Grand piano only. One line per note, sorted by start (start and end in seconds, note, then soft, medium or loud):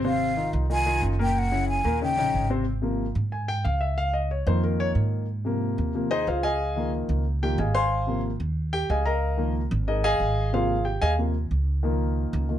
0.04 0.31 C3 medium
0.04 0.31 C4 medium
0.04 0.32 C5 medium
0.36 0.64 D#3 medium
0.36 0.64 D#4 medium
0.36 0.64 F4 medium
0.70 0.83 D#3 medium
0.70 0.83 D#4 medium
0.70 0.84 F4 medium
0.86 1.13 D#3 medium
0.86 1.13 D#4 medium
0.86 1.13 F4 medium
1.19 1.46 A#2 medium
1.19 1.46 A#3 medium
1.19 1.46 A#4 medium
1.51 1.79 C#3 medium
1.51 1.79 C#4 medium
1.51 1.79 E4 medium
1.84 1.98 A#2 medium
1.84 1.98 A#3 medium
1.84 1.98 A#4 medium
2.01 2.15 C#3 medium
2.01 2.15 C#4 medium
2.01 2.15 D#4 medium
2.18 2.45 C#3 medium
2.18 2.45 C#4 medium
2.18 2.45 D#4 medium
2.50 2.64 C3 medium
2.50 2.64 C4 medium
2.50 2.64 C5 medium
2.82 3.04 C3 medium
2.82 3.05 F3 medium
2.82 3.05 A#3 medium
3.32 3.48 G#5 medium
3.48 3.64 G5 loud
3.65 3.81 F5 medium
3.81 3.97 E5 medium
3.98 4.14 F5 loud
4.14 4.30 D#5 medium
4.31 4.47 C#5 medium
4.47 5.25 D#3 medium
4.47 5.25 F3 medium
4.47 5.25 A#3 medium
4.47 4.63 C5 medium
4.64 4.79 A#4 medium
4.80 4.90 C#5 loud
5.45 5.92 C3 medium
5.45 5.92 F3 soft
5.45 5.92 A#3 medium
5.94 6.09 C3 soft
5.94 6.09 F3 soft
5.94 6.10 A#3 medium
6.11 6.27 D#4 medium
6.11 6.27 G#4 medium
6.11 6.27 C5 medium
6.11 6.27 D#5 loud
6.28 6.44 F4 medium
6.28 6.42 G#4 medium
6.28 6.44 C5 medium
6.28 6.42 F5 medium
6.43 6.89 G#4 medium
6.43 6.89 D#5 medium
6.43 6.89 F5 medium
6.43 6.89 G#5 loud
6.76 7.23 D#3 medium
6.76 7.23 F3 medium
6.76 7.24 A#3 medium
7.42 7.57 D#3 medium
7.42 7.57 F3 soft
7.42 7.57 A#3 medium
7.42 7.58 G4 medium
7.42 7.58 G5 medium
7.59 7.75 G#4 medium
7.59 7.74 D#5 medium
7.59 7.73 F5 medium
7.59 7.73 G#5 medium
7.75 8.20 C5 medium
7.75 8.20 F5 medium
7.75 8.20 G#5 medium
7.75 8.20 C6 loud
8.07 8.29 C3 medium
8.07 8.29 F3 soft
8.07 8.30 A#3 medium
8.73 8.89 G4 medium
8.73 8.89 G5 loud
8.90 9.06 G#4 medium
8.90 9.04 D#5 medium
8.90 9.04 F5 medium
8.90 9.05 G#5 medium
9.06 9.51 A#4 medium
9.06 9.51 D#5 medium
9.06 9.51 F5 medium
9.06 9.51 A#5 medium
9.37 9.59 D#3 medium
9.37 9.60 F3 medium
9.37 9.60 A#3 medium
9.88 10.04 D#4 medium
9.88 10.03 G#4 medium
9.88 10.04 A#4 medium
9.88 10.03 D#5 medium
10.04 10.50 G#4 loud
10.04 10.50 D#5 loud
10.04 10.50 F5 loud
10.04 10.50 G#5 loud
10.53 10.75 C3 medium
10.53 10.75 F3 medium
10.53 10.75 A#3 medium
10.53 10.84 F4 medium
10.53 10.84 G#4 medium
10.53 10.84 C5 medium
10.53 10.84 F5 medium
10.85 11.01 G4 medium
10.85 11.01 G5 medium
11.02 11.12 G#4 medium
11.02 11.12 D#5 medium
11.02 11.12 F5 medium
11.02 11.11 G#5 loud
11.18 11.33 C3 soft
11.18 11.33 F3 soft
11.18 11.33 A#3 medium
11.83 12.47 D#3 medium
11.83 12.48 F3 medium
11.83 12.49 A#3 medium
12.49 12.59 D#3 soft
12.49 12.59 F3 soft
12.49 12.59 A#3 soft